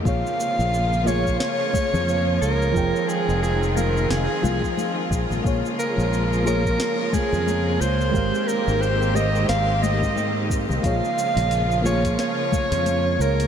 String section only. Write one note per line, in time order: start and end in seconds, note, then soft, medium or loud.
0.04 2.72 C#3 medium
0.04 5.07 F3 medium
0.04 13.47 G#3 medium
0.04 2.72 A#3 medium
0.04 2.72 F4 medium
2.75 5.08 D#3 medium
2.75 5.09 C4 medium
2.75 8.10 F4 medium
5.11 8.11 C#3 medium
5.11 8.11 F3 medium
5.11 13.47 A#3 medium
8.14 10.81 D#3 medium
8.14 10.81 C4 medium
8.14 10.81 G4 medium
10.83 13.47 C#3 medium
10.83 13.47 F3 medium
10.83 13.47 F4 medium